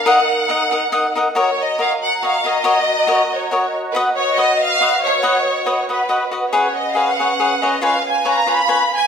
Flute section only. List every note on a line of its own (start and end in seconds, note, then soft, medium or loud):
0.00 1.33 A#4 medium
0.05 1.33 D#4 medium
0.05 1.34 F#5 medium
1.34 6.49 F#4 medium
1.34 6.28 D#5 medium
1.34 3.91 A#5 medium
3.94 8.84 B4 medium
6.51 8.82 C#4 medium
6.51 7.80 F#5 medium
7.83 9.07 F5 medium